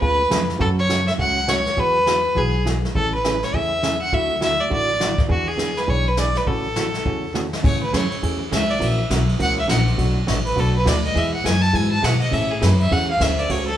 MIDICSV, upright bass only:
0, 0, Header, 1, 3, 480
1, 0, Start_track
1, 0, Key_signature, 3, "major"
1, 0, Tempo, 292826
1, 993, Time_signature, 4, 2, 24, 8
1, 22577, End_track
2, 0, Start_track
2, 0, Title_t, "Upright bass"
2, 0, Program_c, 0, 32
2, 30, Note_on_c, 0, 38, 87
2, 440, Note_off_c, 0, 38, 0
2, 514, Note_on_c, 0, 41, 82
2, 922, Note_off_c, 0, 41, 0
2, 983, Note_on_c, 0, 42, 90
2, 1756, Note_off_c, 0, 42, 0
2, 1955, Note_on_c, 0, 37, 85
2, 2723, Note_off_c, 0, 37, 0
2, 2913, Note_on_c, 0, 40, 82
2, 3682, Note_off_c, 0, 40, 0
2, 3882, Note_on_c, 0, 35, 84
2, 4648, Note_off_c, 0, 35, 0
2, 4844, Note_on_c, 0, 33, 90
2, 5609, Note_off_c, 0, 33, 0
2, 5795, Note_on_c, 0, 40, 83
2, 6564, Note_off_c, 0, 40, 0
2, 6763, Note_on_c, 0, 38, 94
2, 7529, Note_off_c, 0, 38, 0
2, 7729, Note_on_c, 0, 33, 85
2, 8493, Note_off_c, 0, 33, 0
2, 8678, Note_on_c, 0, 40, 91
2, 9447, Note_off_c, 0, 40, 0
2, 9639, Note_on_c, 0, 35, 85
2, 10408, Note_off_c, 0, 35, 0
2, 10608, Note_on_c, 0, 33, 88
2, 11373, Note_off_c, 0, 33, 0
2, 11567, Note_on_c, 0, 40, 86
2, 12333, Note_off_c, 0, 40, 0
2, 12529, Note_on_c, 0, 45, 85
2, 12991, Note_off_c, 0, 45, 0
2, 13007, Note_on_c, 0, 42, 86
2, 13278, Note_off_c, 0, 42, 0
2, 13491, Note_on_c, 0, 40, 89
2, 13952, Note_off_c, 0, 40, 0
2, 13967, Note_on_c, 0, 37, 98
2, 14430, Note_off_c, 0, 37, 0
2, 14445, Note_on_c, 0, 34, 86
2, 14909, Note_off_c, 0, 34, 0
2, 14925, Note_on_c, 0, 35, 88
2, 15389, Note_off_c, 0, 35, 0
2, 15409, Note_on_c, 0, 37, 94
2, 15871, Note_off_c, 0, 37, 0
2, 15893, Note_on_c, 0, 34, 99
2, 16353, Note_off_c, 0, 34, 0
2, 16363, Note_on_c, 0, 35, 85
2, 16828, Note_off_c, 0, 35, 0
2, 16842, Note_on_c, 0, 33, 89
2, 17307, Note_off_c, 0, 33, 0
2, 17336, Note_on_c, 0, 35, 92
2, 17794, Note_off_c, 0, 35, 0
2, 17803, Note_on_c, 0, 38, 101
2, 18268, Note_off_c, 0, 38, 0
2, 18286, Note_on_c, 0, 40, 88
2, 18749, Note_off_c, 0, 40, 0
2, 18768, Note_on_c, 0, 42, 94
2, 19230, Note_off_c, 0, 42, 0
2, 19248, Note_on_c, 0, 44, 91
2, 19710, Note_off_c, 0, 44, 0
2, 19728, Note_on_c, 0, 47, 96
2, 20190, Note_off_c, 0, 47, 0
2, 20204, Note_on_c, 0, 45, 87
2, 20667, Note_off_c, 0, 45, 0
2, 20690, Note_on_c, 0, 42, 91
2, 21150, Note_off_c, 0, 42, 0
2, 21169, Note_on_c, 0, 40, 90
2, 21629, Note_off_c, 0, 40, 0
2, 21646, Note_on_c, 0, 38, 96
2, 22108, Note_off_c, 0, 38, 0
2, 22127, Note_on_c, 0, 37, 88
2, 22577, Note_off_c, 0, 37, 0
2, 22577, End_track
3, 0, Start_track
3, 0, Title_t, "Muted upright bass strokes"
3, 13300, Note_on_c, 9, 29, 40
3, 13464, Note_off_c, 9, 29, 0
3, 22577, End_track
0, 0, End_of_file